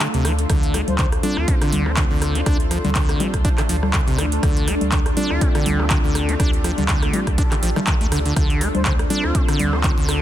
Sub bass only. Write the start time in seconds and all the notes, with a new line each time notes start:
0.14 D2
0.50 D2
0.88 D2
1.37 D2
1.73 D2
2.11 D2
2.46 D2
2.85 D2
3.34 D2
3.69 D2
4.07 D2
4.43 D2
4.81 D2
5.30 D2
5.66 D2
6.04 D2
6.40 D2
6.78 D2
7.27 D2
7.63 A1
8.01 D2
8.36 D2
8.75 D2
9.24 D2
9.59 D2
9.98 D2